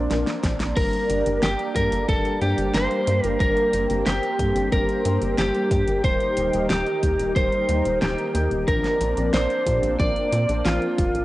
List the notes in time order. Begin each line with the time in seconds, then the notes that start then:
Already playing: A#3 C4 D4
0.11 A#1 F3 C4 D4 A#4, snare, closed hi-hat
0.27 snare, closed hi-hat
0.44 A#1, kick, snare, closed hi-hat
0.60 A#1, snare, closed hi-hat
0.77 G1 G3 A#3 D4 G4 A#4, kick, closed hi-hat, crash
0.93 closed hi-hat
1.10 G1, closed hi-hat
1.26 G1 G3 A#3 D4 A#4, closed hi-hat
1.43 G1 G4, snare, closed hi-hat
1.59 closed hi-hat
1.76 G2 G3 A#3 D4 A4 A#4, kick, closed hi-hat
1.92 G1, closed hi-hat
2.09 G1 G3 A#3 D4 A4 A#4, kick, closed hi-hat
2.25 closed hi-hat
2.42 G2 G3 A#3 D4 G4 C5, closed hi-hat
2.58 G1, closed hi-hat
2.74 G1 C5, snare, closed hi-hat
2.91 G3 A#3 D4 A#4, closed hi-hat
3.07 G2, closed hi-hat
3.24 G1 A#4, closed hi-hat
3.40 G1 G3 A#3 C4 D4 A#4, kick, closed hi-hat
3.57 closed hi-hat
3.73 G1, closed hi-hat
3.90 G1 G3 A#3 D4 A#4, closed hi-hat
4.06 G1 G4, snare, closed hi-hat
4.23 closed hi-hat
4.39 G2 G3 A#3 D4 A4, kick, closed hi-hat
4.56 G1, closed hi-hat
4.72 G1 G3 A#3 D4 A#4, kick, closed hi-hat
4.89 closed hi-hat
5.05 G2 G3 A#3 D4 C5, closed hi-hat
5.22 G1, closed hi-hat
5.38 G1 G4, snare, closed hi-hat
5.55 G3 A#3 D4 A#4, closed hi-hat
5.71 G2, kick, closed hi-hat
5.88 G1, closed hi-hat
6.04 D#1 D#3 G3 A#3 D#4 A#4 C5, kick, closed hi-hat
6.20 closed hi-hat
6.37 D#1, closed hi-hat
6.53 D#1 G3 A#3 D#4 A#4, closed hi-hat
6.70 D#1 G4, snare, closed hi-hat
6.86 closed hi-hat
7.03 D#2 G3 A#3 D#4 G4, kick, closed hi-hat
7.19 D#1, closed hi-hat
7.36 D#1 G3 A#3 D#4 A#4 C5, kick, closed hi-hat
7.52 closed hi-hat
7.69 D#2 G3 A#3 D#4 C5, closed hi-hat
7.85 D#1, closed hi-hat
8.02 D#1 G4, snare, closed hi-hat
8.18 G3 A#3 D#4 A#4, closed hi-hat
8.35 D#2, closed hi-hat
8.51 D#1, closed hi-hat
8.68 A#1 F3 A#3 C4 D4 A#4, kick, closed hi-hat
8.84 snare, closed hi-hat
9.01 A#1, closed hi-hat
9.17 A#1 F3 C4 D4 A#4, closed hi-hat
9.34 A#1 C5, snare, closed hi-hat
9.50 closed hi-hat
9.67 A#2 F3 C4 D4 G4, kick, closed hi-hat
9.83 A#1, closed hi-hat
10.00 A#1 F3 C4 D4 A#4 D5, kick, closed hi-hat
10.16 closed hi-hat
10.33 A#2, closed hi-hat
10.49 A#1, closed hi-hat
10.65 A#1 F3 C4 D4 F4 A#4, snare, closed hi-hat
10.82 closed hi-hat
10.98 F1, kick, closed hi-hat
11.15 A#1, closed hi-hat